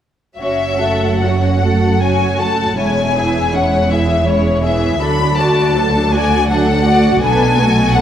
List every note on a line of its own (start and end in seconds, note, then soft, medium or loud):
0.38 2.73 F#1 soft
0.38 2.74 F#2 soft
0.38 0.78 F#3 soft
0.38 0.78 C#4 soft
0.38 0.78 F#4 soft
0.38 0.78 C#5 soft
0.38 1.18 E5 medium
0.81 1.22 A3 soft
0.81 1.22 F#4 soft
0.81 1.22 A4 soft
0.81 1.22 F#5 soft
1.22 1.63 F#3 soft
1.22 1.63 C#4 soft
1.22 1.63 F#4 soft
1.22 1.62 C#5 soft
1.22 2.01 F#5 medium
1.62 2.02 A3 soft
1.62 2.02 F#4 soft
1.62 2.02 A4 soft
1.62 2.01 F#5 soft
2.01 2.37 F#3 soft
2.01 2.37 C#4 soft
2.01 2.37 F#4 soft
2.01 2.37 C#5 soft
2.01 2.40 G#5 medium
2.39 2.77 A3 soft
2.39 2.77 F#4 soft
2.39 2.78 A4 soft
2.39 2.78 F#5 soft
2.39 2.77 A5 medium
2.78 4.97 E1 soft
2.78 4.97 E2 soft
2.78 3.13 G#3 soft
2.78 3.13 C#4 soft
2.78 3.14 E4 soft
2.78 3.13 C#5 soft
2.78 3.53 G#5 medium
3.16 3.54 E3 soft
3.16 3.54 E4 soft
3.16 3.54 G#4 soft
3.16 3.54 E5 soft
3.54 3.91 G#3 soft
3.54 3.91 C#4 soft
3.54 3.91 E4 soft
3.54 3.91 C#5 soft
3.54 3.91 F#5 medium
3.90 4.28 E3 soft
3.90 4.28 E4 soft
3.90 4.27 G#4 soft
3.90 4.27 E5 soft
3.90 4.28 E5 medium
4.26 4.62 G#3 soft
4.26 4.62 C#4 soft
4.26 4.61 E4 soft
4.26 4.61 C#5 soft
4.26 4.64 C#5 medium
4.63 5.01 E3 soft
4.63 5.02 E4 soft
4.63 5.00 G#4 soft
4.63 5.00 E5 soft
4.63 5.00 E5 medium
5.01 7.18 D2 medium
5.01 7.19 D2 medium
5.01 5.36 F#3 soft
5.01 5.36 D4 soft
5.01 5.36 A4 soft
5.01 5.38 B5 medium
5.38 5.76 A3 soft
5.38 5.76 F#4 soft
5.38 5.76 D5 soft
5.38 6.13 A5 medium
5.75 6.13 F#3 soft
5.75 6.13 D4 soft
5.75 6.12 A4 soft
6.12 6.50 A3 soft
6.12 6.49 F#4 soft
6.12 6.50 F#4 soft
6.12 6.49 D5 soft
6.12 6.50 G#5 medium
6.49 6.84 F#3 soft
6.49 6.83 D4 soft
6.49 6.83 A4 soft
6.49 7.21 F#5 medium
6.85 7.23 A3 soft
6.85 7.22 F#4 soft
6.85 7.23 F#4 soft
6.85 7.22 D5 soft
7.22 8.01 B1 medium
7.22 8.01 B2 medium
7.22 7.57 B3 medium
7.22 7.57 D4 soft
7.22 7.56 A4 medium
7.22 7.56 B4 soft
7.22 7.94 G#5 medium
7.59 7.96 A3 soft
7.59 7.95 B3 soft
7.59 7.95 F#4 soft
7.59 7.93 A4 soft
7.94 8.01 B3 medium
7.94 8.01 D4 medium
7.94 8.01 A4 soft
7.94 8.01 B4 soft
7.94 8.01 F#5 medium